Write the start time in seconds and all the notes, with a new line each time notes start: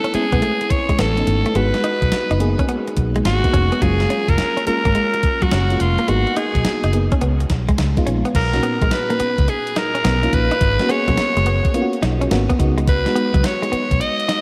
Already playing: A3 B3 C#4 E4 A4
0.04 C#4, closed hi-hat
0.14 G#3 B3 C4 E4 G#4, muted clean electric guitar stroke, muted fingered electric bass stroke, closed hi-hat
0.21 C#4
0.32 B1 B3, kick, closed hi-hat
0.42 A3, closed hi-hat
0.61 muted clean electric guitar stroke, closed hi-hat
0.70 C#5, kick, closed hi-hat
0.89 G#3, kick, closed hi-hat
0.99 A1 B3 A4, snare, closed hi-hat
1.17 A3 B3 C#4 D#4, closed hi-hat
1.27 G#1, muted clean electric guitar stroke, closed hi-hat
1.46 A3, closed hi-hat
1.55 G#1 G#3 B3 D#4 F#4 B4, closed hi-hat
1.74 muted clean electric guitar stroke, snare, closed hi-hat
1.84 D#4, closed hi-hat
2.02 B1, kick, closed hi-hat
2.12 muted fingered electric bass stroke, snare, closed hi-hat
2.31 F#1 D#4, closed hi-hat
2.40 A#3 B3 D#4 G#4, muted clean electric guitar stroke, closed hi-hat
2.59 C#4, kick, closed hi-hat
2.69 B3, closed hi-hat
2.87 muted clean electric guitar stroke, closed hi-hat
2.97 B1, kick, closed hi-hat
3.16 G#3, closed hi-hat
3.25 G#1 F#4, muted clean electric guitar stroke, snare, closed hi-hat
3.44 A#3 B3 D#4 F#4, kick, closed hi-hat
3.54 F1 C#4, kick, closed hi-hat
3.72 B3, closed hi-hat
3.82 F#1 F#3 G#3 A#3 C#4 F4 G#4, kick, closed hi-hat
4.00 muted clean electric guitar stroke, snare, closed hi-hat
4.10 C#4, closed hi-hat
4.28 F1 A#4, kick, closed hi-hat
4.38 snare, closed hi-hat
4.57 C#4, closed hi-hat
4.67 G#3 A#3 C#4 F4 A#4, muted clean electric guitar stroke, muted fingered electric bass stroke, closed hi-hat
4.85 G#1 A#3, kick, closed hi-hat
4.95 G#3, closed hi-hat
5.14 muted clean electric guitar stroke, closed hi-hat
5.23 kick, closed hi-hat
5.42 F#3 F#4, kick, closed hi-hat
5.51 F#1 C#4, snare, closed hi-hat
5.70 G#3 A#3 C#4 F4, closed hi-hat
5.80 F1 F4, muted clean electric guitar stroke, closed hi-hat
5.98 A#3, closed hi-hat
6.08 G#1 G#3 A#3 B3 D#4 F#4, closed hi-hat
6.27 muted clean electric guitar stroke, closed hi-hat
6.36 D#4 G#4, closed hi-hat
6.55 B1, kick, closed hi-hat
6.65 muted fingered electric bass stroke, snare, closed hi-hat
6.84 F#1 D#4, closed hi-hat
6.93 A#3 B3 D#4 G#4, muted clean electric guitar stroke, closed hi-hat
7.12 C#4, kick, closed hi-hat
7.21 C#2 B3, closed hi-hat
7.40 muted clean electric guitar stroke, closed hi-hat
7.50 B1, kick, snare, closed hi-hat
7.69 G#3, kick, closed hi-hat
7.78 C#2, muted clean electric guitar stroke, snare, closed hi-hat
7.97 G#3 B3 D#4 F4, kick, closed hi-hat
8.07 A#1 C#4, closed hi-hat
8.25 B3, closed hi-hat
8.35 B1 A#4, kick, closed hi-hat, crash
8.53 A#2 C#4 D#4 F#4, muted clean electric guitar stroke, snare, closed hi-hat
8.63 B3, closed hi-hat
8.82 A#1 G#3, kick, closed hi-hat
8.91 B4, muted clean electric guitar stroke, snare, closed hi-hat
9.10 A#3, closed hi-hat
9.20 B3, muted fingered electric bass stroke, closed hi-hat
9.38 C#2, kick, closed hi-hat
9.48 G#4, muted clean electric guitar stroke, closed hi-hat
9.67 closed hi-hat
9.76 D#4 A#4, snare, closed hi-hat
9.95 C#4, closed hi-hat
10.05 B1 B3, snare, closed hi-hat
10.23 A#3 C#4 D#4 F4, muted clean electric guitar stroke, closed hi-hat
10.33 A#1 B4, kick, closed hi-hat
10.51 D#4, closed hi-hat
10.61 G#1, kick, closed hi-hat
10.79 A#3 B3 C#4 F#4, muted clean electric guitar stroke, snare, closed hi-hat
10.89 A#3 B3 C#4 G#4 C#5, closed hi-hat
11.08 B1 F#3 A#3 B3 C#4 G#4, kick, closed hi-hat
11.17 muted fingered electric bass stroke, muted clean electric guitar stroke, snare, closed hi-hat
11.37 F#1 G#3, closed hi-hat
11.46 B3, closed hi-hat
11.65 kick, closed hi-hat
11.74 A#3 B3 C#4 F4, muted clean electric guitar stroke, closed hi-hat
11.82 F#4
11.93 closed hi-hat
12.02 B1 D#4, snare, closed hi-hat
12.21 C#4, closed hi-hat
12.31 G#1 A#3 B3 C#4 F#4, snare, closed hi-hat
12.50 B3, kick, closed hi-hat
12.59 C#2 G#3 B3 D#4 F#4, muted clean electric guitar stroke, kick, closed hi-hat
12.78 G#3, closed hi-hat
12.88 B4, kick, closed hi-hat
13.06 G#3 B3 D#4 F#4, muted clean electric guitar stroke, snare, closed hi-hat
13.16 B3, closed hi-hat
13.34 C#2 F#3, kick, closed hi-hat
13.44 C#5, muted clean electric guitar stroke, snare, closed hi-hat
13.62 G#3, closed hi-hat
13.72 B3, muted fingered electric bass stroke, closed hi-hat
13.91 B1, kick, closed hi-hat
14.00 D#5, muted clean electric guitar stroke, closed hi-hat
14.20 closed hi-hat
14.29 D#4, snare, closed hi-hat